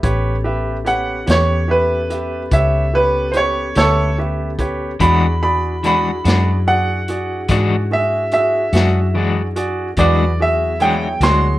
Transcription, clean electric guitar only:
5.00 5.25 E3 medium
5.00 5.26 G#3 medium
5.00 5.26 D4 medium
5.00 5.26 F#4 medium
5.83 6.09 E3 soft
5.83 6.09 G#3 medium
5.83 6.10 D4 medium
5.83 6.10 F#4 medium
6.25 6.52 G#3 soft
6.25 6.51 D4 soft
6.25 6.50 F#4 soft
7.49 7.74 E3 medium
7.49 7.75 G#3 medium
7.49 7.75 D4 medium
7.49 7.75 F#4 medium
8.73 9.00 G#3 soft
8.73 8.99 D4 soft
8.73 8.98 F#4 soft
9.15 9.40 E3 soft
9.15 9.41 G#3 medium
9.15 9.41 D4 medium
9.15 9.42 F#4 medium
9.99 10.23 E3 medium
9.99 10.24 G#3 medium
9.99 10.24 D4 medium
9.99 10.24 F#4 medium
10.81 11.06 E3 medium
10.81 11.07 G#3 medium
10.81 11.07 D4 medium
10.81 11.08 F#4 medium
11.22 11.49 G#3 soft
11.22 11.48 D4 soft
11.22 11.47 F#4 soft

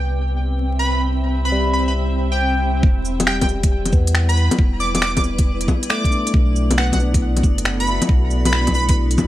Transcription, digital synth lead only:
0.79 1.02 B5 medium
1.45 1.73 B5 medium
1.73 1.83 B5 medium
1.88 1.93 B5 medium
2.32 2.83 G5 medium
3.27 3.37 G5 medium
3.42 3.46 G5 medium
4.29 4.52 B5 medium
4.80 4.90 D6 medium
4.95 5.00 D6 medium
5.02 5.12 D6 medium
5.17 5.22 D6 medium
5.90 6.34 D6 medium
6.78 6.87 F#5 medium
6.94 6.98 F#5 medium
7.80 8.03 B5 medium
8.46 8.74 B5 medium
8.75 8.84 B5 medium
8.89 8.94 B5 medium

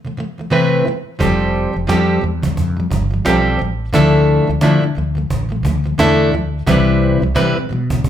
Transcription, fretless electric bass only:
1.21 1.65 F1 medium
1.76 1.87 F1 medium
1.89 2.17 F2 medium
2.23 2.51 E2 medium
2.57 2.85 F2 medium
2.91 3.19 G1 medium
3.27 3.54 B1 medium
3.61 3.88 A1 medium
3.94 4.39 D2 medium
4.49 4.60 D2 medium
4.63 4.91 D3 medium
4.97 5.25 D2 medium
5.30 5.64 A1 medium
5.64 5.93 D2 medium
6.00 6.34 E2 medium
6.34 6.62 D2 medium
6.67 7.12 C2 medium
7.22 7.33 C2 medium
7.36 7.64 C3 medium
7.71 7.99 B2 medium
8.04 8.09 C3 medium

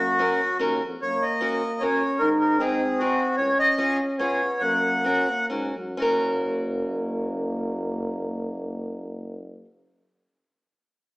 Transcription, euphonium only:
0.00 0.19 A#3 medium
0.20 0.79 F#3 medium
1.03 1.84 A#3 medium
1.83 2.22 C#4 loud
2.20 2.61 D#4 loud
2.59 3.39 C4 loud
3.37 4.20 C#4 loud
4.19 4.63 B3 medium
4.62 5.07 A#3 loud
5.06 5.31 C#4 medium
5.29 5.51 A#3 medium
5.51 5.79 G#3 medium
5.78 5.99 F#3 medium
6.00 9.64 A#3 medium

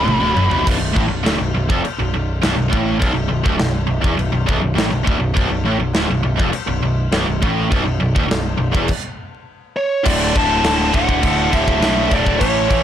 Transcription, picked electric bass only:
0.07 0.21 A1 loud
0.21 0.36 D1 medium
0.36 0.50 F#1 loud
0.51 0.65 B0 loud
0.67 0.79 B0 loud
0.80 0.94 B0 medium
0.96 1.08 A1 loud
1.09 1.23 B0 medium
1.24 1.38 D1 medium
1.39 1.53 B0 medium
1.54 1.68 B0 medium
1.70 1.83 F1 loud
1.85 muted picked electric bass stroke soft
2.00 2.13 B0 medium
2.14 2.41 B0 medium
2.43 2.57 B0 loud
2.58 2.71 B0 medium
2.73 3.00 A1 loud
3.02 3.14 B0 medium
3.15 3.29 B0 medium
3.30 3.44 B0 medium
3.46 3.59 D1 medium
3.60 3.88 B0 medium
3.89 4.03 B0 medium
4.04 4.18 E1 medium
4.19 4.32 B0 medium
4.33 4.47 B0 medium
4.49 4.62 B0 loud
4.63 4.76 B0 medium
4.76 4.90 A1 loud
4.90 5.05 B0 medium
5.07 5.19 D1 loud
5.19 5.34 B0 medium
5.37 5.49 B0 loud
5.50 5.64 B0 medium
5.65 5.79 A1 loud
5.79 5.93 B0 medium
5.95 6.09 D1 loud
6.09 6.23 B0 medium
6.24 6.38 B0 medium
6.39 6.53 F1 loud
6.53 muted picked electric bass stroke soft
6.68 6.82 B0 medium
6.83 7.10 B0 medium
7.12 7.26 B0 medium
7.28 7.41 B0 medium
7.43 7.70 A1 loud
7.72 7.85 B0 loud
7.86 8.00 B0 medium
8.01 8.14 B0 medium
8.16 8.29 D1 medium
8.29 8.57 B0 medium
8.59 8.73 B0 medium
8.74 8.88 E1 loud
10.06 10.32 D1 medium
10.36 10.61 D1 loud
10.64 10.90 D1 medium
10.94 11.20 D1 loud
11.23 11.49 D1 loud
11.53 11.79 D1 loud
11.81 12.07 B1 medium
12.12 12.37 D1 medium
12.41 12.67 A1 loud
12.70 12.83 A1 loud

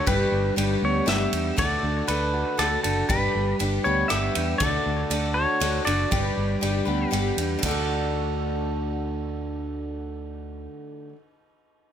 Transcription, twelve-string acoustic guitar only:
0.07 0.55 G3 medium
0.07 0.56 D4 medium
0.07 0.56 G4 medium
0.07 0.57 B4 medium
0.56 1.05 G3 soft
0.56 1.07 D4 soft
0.56 1.06 G4 soft
0.56 1.07 B4 soft
1.06 1.57 G3 medium
1.06 1.57 D4 medium
1.06 1.58 G4 medium
1.06 1.58 B4 medium
1.57 2.08 D3 medium
1.57 2.06 A3 medium
1.57 2.08 D4 medium
1.57 2.08 F#4 medium
1.57 2.09 A4 medium
2.07 2.56 A3 soft
2.07 2.58 D4 medium
2.07 2.58 F#4 soft
2.07 2.59 A4 soft
2.58 3.08 A3 soft
2.58 3.09 D4 medium
2.58 3.09 F#4 medium
2.58 3.10 A4 medium
3.09 3.58 G3 medium
3.09 3.60 D4 medium
3.09 3.60 G4 medium
3.09 3.60 B4 medium
3.59 3.85 G3 soft
3.59 3.85 D4 soft
3.59 3.85 G4 soft
3.59 3.84 B4 soft
3.85 4.09 D4 soft
3.85 4.10 G4 soft
3.85 4.10 B4 soft
4.09 4.60 G3 medium
4.09 4.61 D4 medium
4.09 4.61 G4 medium
4.09 4.61 B4 medium
4.61 5.11 D3 medium
4.61 5.09 A3 medium
4.61 5.11 D4 medium
4.61 5.11 F#4 medium
4.61 5.11 A4 medium
5.10 5.59 A3 soft
5.10 5.61 D4 soft
5.10 5.60 F#4 soft
5.10 5.62 A4 medium
5.60 5.86 A3 medium
5.60 5.86 D4 soft
5.60 5.85 F#4 medium
5.60 5.83 A4 medium
5.85 6.11 D4 soft
5.85 6.12 F#4 soft
5.85 6.11 A4 soft
6.11 6.60 G3 medium
6.11 6.61 D4 medium
6.11 6.62 G4 medium
6.11 6.62 B4 medium
6.61 6.87 G3 soft
6.61 6.86 D4 soft
6.61 6.85 G4 soft
6.61 6.84 B4 medium
6.85 7.10 D4 soft
6.85 7.11 G4 soft
6.85 7.12 B4 soft
7.11 7.62 G3 medium
7.11 7.63 D4 medium
7.11 7.63 G4 medium
7.11 7.63 B4 medium
7.59 11.09 D3 medium
7.59 11.12 A3 medium
7.66 11.16 D4 medium
7.66 11.19 F#4 medium
7.71 11.21 A4 medium

